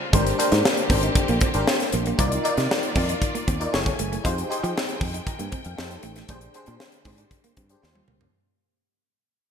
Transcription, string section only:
Already playing: C#3 G3 C4 F4
0.13 D3 A#3 C4 G4
2.19 D#3 A#3 F4 D5
3.73 E3 A3 G#5
4.25 D#3 G#3 G5
5.78 A3
6.30 D3 G#3 C5
7.84 C#3 G3 F4

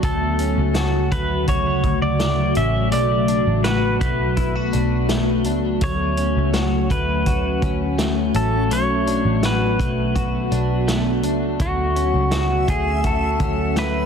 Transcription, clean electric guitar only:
Already playing: D4 F#4
0.03 A3
0.39 C#4
0.75 F#4
1.11 A3
1.48 F#4
2.20 A3
2.56 C#4
2.92 A3
3.28 D4
3.65 F#4
4.01 A3
4.37 E4
4.55 F#4
4.73 D4
5.10 A3
5.45 D4
5.82 A3
6.17 C#4
6.54 F#4
6.90 A3
7.27 F#4
7.62 C#4
7.98 A3
8.34 C#4
8.71 A3
9.07 D4
9.44 F#4
9.80 A3
10.15 F#4
10.52 D4
10.88 A3
11.24 D4
11.60 A3
11.96 C#4
12.32 F#4
12.68 A3
13.04 F#4
13.40 C#4
13.76 A3

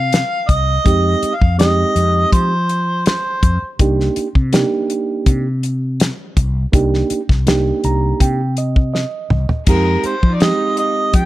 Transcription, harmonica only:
Already playing: F5
0.49 D#5
1.34 F5
1.59 D#5
2.33 C5
3.06 C5
9.69 A#4
10.06 C5
10.34 D5
10.42 D#5
10.78 D#5
11.15 G5

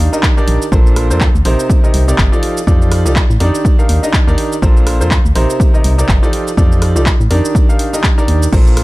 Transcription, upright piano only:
0.13 D#3 D4 D#4 G4 A#4 D#5
0.37 D#3 D4 D#4 G4 A#4 D5
0.72 A#2 D4 F4 A4 A#4 C5
1.10 A#2 D4 F4 A4 A#4 C5
1.45 C3 C4 D#4 G4 A#4 C5
1.84 C3 C4 D#4 G4 A#4 D#5
2.08 C3 C4 D#4 G4 A#4 D5
2.32 F3 D#4 F4 G4 A4 D5
2.67 F3 D#4 F4 G4 A4 D5
3.06 F3 D#4 F4 G4 A4 D5
3.40 D#3 D4 D#4 G4 A#4 D5
3.79 D#3 D4 D#4 G4 A#4 F5
4.03 D#3 D4 D#4 G4 A#4 D#5
4.27 D#3 D4 D#4 G4 A#4 D5
4.62 A#2 D4 F4 A4 A#4 C5
5.01 A#2 D4 F4 A4 A#4 C5
5.36 C3 C4 D#4 G4 A#4 C5
5.74 C3 C4 D#4 G4 A#4 D#5
5.98 C3 C4 D#4 G4 A#4 D5
6.23 F3 D#4 F4 G4 A4 D5
6.57 F3 D#4 F4 G4 A4 D5
6.96 F3 D#4 F4 G4 A4 D5
7.31 D#3 D4 D#4 G4 A#4 D5
7.69 D#3 D4 D#4 G4 A#4 F5
7.93 D#3 D4 D#4 G4 A#4 D#5
8.18 D#3 D4 D#4 G4 A#4 D5
8.53 A#2 D4 F4 A4 A#4 C5

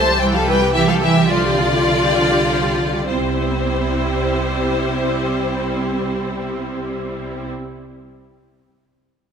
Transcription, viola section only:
0.07 G3 G4
0.20 E3 E4
0.33 G3 G4
0.47 E3 E4
0.60 G3 G4
0.74 E3 E4
0.88 G3 G4
1.02 E3 E4
1.16 G3 G4
1.29 F3 F4
1.44 G3 G4
1.58 F3 F4
1.72 G3 G4
1.86 F3 F4
2.01 G3 G4
2.16 F3 F4
2.31 G3 G4
2.45 F3 F4
2.62 G3 G4
2.77 F3 F4
2.92 G3 G4
3.07 G3 E4

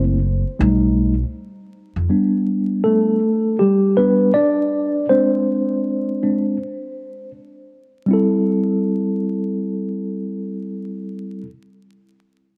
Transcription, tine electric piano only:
Already playing: A3 C4 E4
0.59 G3 A3 D#4
2.09 G3 B3 D4
2.84 A3 A4
3.59 G3 G4
3.97 G3 B3 D4 B4
4.34 D4 D5
5.10 G#3 C4 D4 C5
6.23 G#3 C4 D4
8.06 G3 C4
8.11 E4 A4

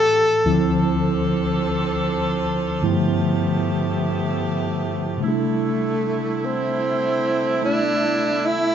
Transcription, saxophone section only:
Already playing: G3 A#3 C#4 G4
0.47 F3 C4 D4 A4
2.85 A3 B3 E4 G4
5.22 D3 A3 E4

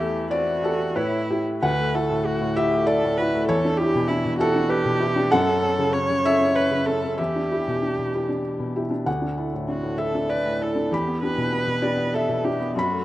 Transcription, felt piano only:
Already playing: E2 E5
0.01 A3
0.31 C4 D5
0.63 G4 A4
0.96 A2 B4 C#5
1.31 E4 G4
1.63 D2 F#5
1.78 A3
1.94 E4 F#4
2.10 A2
2.25 A3
2.41 A2
2.56 E4 F#4 E5
2.73 A3
2.87 D5
3.03 A2
3.19 E4 F#4
3.34 A3
3.49 E2 C#5
3.65 D4
3.80 E4 G4
3.95 B2
4.10 D4
4.25 B2
4.39 E4 G4 A4
4.56 D4
4.69 B4
4.85 B2
5.00 E4 G4
5.16 D4
5.32 F#2 F#5
5.49 C#4
5.63 C#4 A4
5.79 C#3
5.95 C#4
6.10 C#3
6.25 C#4 A4 E5
6.41 C#4
6.55 C#5
6.71 C#3
6.88 C#4 A4
7.04 C#4
7.18 E2 E5
7.36 D4
7.52 E4 G4
7.68 B2
7.83 D4
7.99 B2
8.14 E4 G4
8.29 D4
8.59 B2
8.76 E4 G4
8.91 D4
9.06 D2 F#5
9.22 D4
9.37 E4 A4
9.53 A2
9.68 D4
9.83 A2
9.98 E4 A4 E5
10.15 D4
10.29 D5
10.45 A2
10.61 E4 A4
10.75 D4
10.91 E2 B5
11.07 B3
11.23 D4 G4
11.38 B2
11.52 B3
11.67 B2
11.82 D4 G4 D5
11.96 B3
12.15 E5
12.29 B2
12.45 D4 G4
12.60 B3
12.75 F#2 B5
12.92 A3

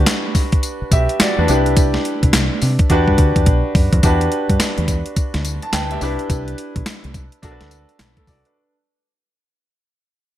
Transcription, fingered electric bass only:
0.82 muted fingered electric bass stroke
0.92 B1
1.21 muted fingered electric bass stroke
1.38 E2
1.49 C2
2.23 C2
2.34 C2
2.62 C3
2.90 E2
3.08 G2
3.19 D2
3.36 E2
3.47 B1
3.75 F#2
3.93 F2
4.04 E2
4.50 G2
4.61 muted fingered electric bass stroke
4.78 E2
5.17 muted fingered electric bass stroke
5.35 D2
5.73 D2
6.02 C2
6.30 C2
6.76 B1
7.05 C2
7.43 B1
7.61 D2
8.00 B1
8.28 C2

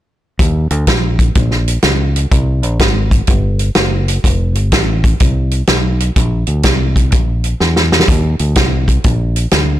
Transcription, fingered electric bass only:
0.40 D#2
0.71 D2
0.87 A#1
1.36 A#1
1.84 C#2
2.32 C2
2.63 A#1
2.80 G#1
3.28 G1
3.76 F#1
4.24 F1
4.56 G1
4.72 A1
5.21 C2
5.69 B1
6.16 A#1
6.48 D2
6.64 C2
7.13 A#1
7.61 E2
8.08 D#2
8.40 D2
8.56 C2
9.05 A#1
9.53 D2

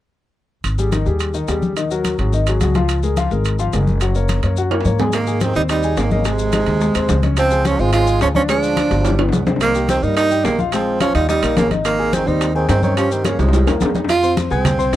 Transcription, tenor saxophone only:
5.14 A#3
5.42 C4
5.56 D#4
5.71 D#4
5.98 A#3
6.12 A#3
6.26 G#3
7.39 C4
7.67 C#4
7.80 F4
7.94 F4
8.23 C#4
8.36 C#4
8.50 D4
9.62 A#3
9.90 C4
10.03 D#4
10.17 D#4
10.45 A#3
10.73 C4
11.01 C#4
11.15 D#4
11.30 D#4
11.58 A#3
11.86 A#3
12.14 C4
12.27 D#4
12.56 C4
12.70 C4
12.84 C4
12.98 C#4
13.12 C4
13.25 A#3
13.40 G#3
14.10 F4
14.51 C4

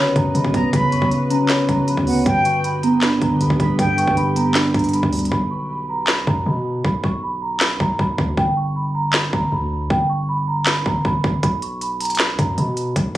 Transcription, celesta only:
Already playing: B5
0.16 A#5
0.35 B5
0.73 B5
0.92 C#6
1.11 B5
1.30 A#5
1.50 B5
1.69 A#5
1.88 B5
2.26 G5
2.45 C#6
2.64 B5
2.83 A#5
3.03 B5
3.22 A#5
3.41 B5
3.79 G5
3.98 C#6
4.17 B5
4.36 A#5
4.55 B5
4.75 A#5
4.94 B5
5.31 B5
5.51 C#6
5.70 B5
5.89 A#5
6.08 B5
6.27 A#5
6.46 B5
6.84 B5
7.04 C#6
7.23 B5
7.42 A#5
7.61 B5
7.80 A#5
7.99 B5
8.38 G5
8.57 C#6
8.76 B5
8.95 A#5
9.14 B5
9.33 A#5
9.52 B5
9.90 G5
10.09 C#6
10.29 B5
10.48 A#5
10.67 B5
10.86 A#5
11.05 B5
11.43 B5
11.62 C#6
11.81 B5
12.01 A#5
12.19 B5
12.39 A#5
12.58 B5

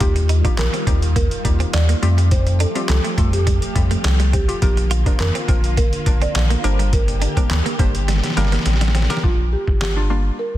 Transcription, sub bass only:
0.01 D#2
0.58 A#1
0.87 D#2
1.45 D#2
1.74 D#2
2.02 F2
2.89 C2
3.18 F2
3.76 F2
4.04 C2
4.62 A#1
5.20 F2
5.48 A#1
6.06 A#1
6.35 A#1
6.64 G1
7.51 D2
7.79 G1
8.37 G1
8.66 A1
9.24 A#1
9.68 G1
10.54 A#1

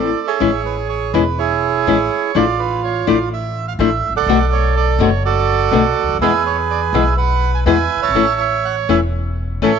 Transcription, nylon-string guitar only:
0.40 E3 G#3 C#4 E4
1.14 E3 G#3 C#4 E4
1.87 E3 G#3 C#4 E4
2.35 F3 A3 D4 E4
3.07 F3 A3 D4 E4
3.79 F3 A3 D4 E4
4.28 B2 D3 A3 B3 F#4
4.99 B2 D3 A3 B3 F#4
5.72 B2 D3 A3 B3 F#4
6.22 B2 E3 G#3 B3 E4
6.94 B2 E3 G#3 B3 E4
7.66 B2 E3 G#3 B3 E4
8.15 E3 A3 C#4 E4
8.89 E3 A3 C#4 E4
9.62 E3 A3 C#4 E4

